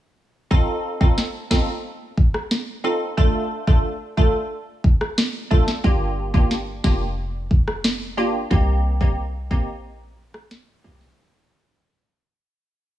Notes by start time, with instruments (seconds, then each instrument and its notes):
0.51 synth stab C4 D#4 F4 A4, kick
1.01 synth stab C4 D#4 F4 A4, kick
1.18 snare
1.51 synth stab C4 D#4 F4 A4, kick, snare
2.17 kick
2.34 cross-stick
2.51 snare
2.84 synth stab C4 D#4 F4 A4
3.17 synth stab A3 D4 F4 A4, kick
3.67 synth stab A3 D4 F4 A4, kick
4.17 synth stab A3 D4 F4 A4, kick
4.84 kick
5.01 cross-stick
5.18 snare
5.51 synth stab A3 D4 F4 A4, kick
5.68 snare
5.84 808-style bass G1, synth stab A#3 D4 F4 G4, kick
6.34 synth stab A#3 D4 F4 G4, kick
6.51 snare
6.84 808-style bass F1, synth stab A#3 D4 F4 G4, kick, snare
7.51 kick
7.68 cross-stick
7.84 snare
8.17 808-style bass G1, synth stab A#3 D4 F4 G4
8.51 808-style bass C2, synth stab A#3 C4 D#4 G4, kick
9.01 synth stab A#3 C4 D#4 G4, kick
9.51 808-style bass A#1, synth stab A#3 C4 D#4 G4, kick
10.34 cross-stick
10.51 snare
10.84 808-style bass C2, synth stab A#3 C4 D#4 G4
11.01 snare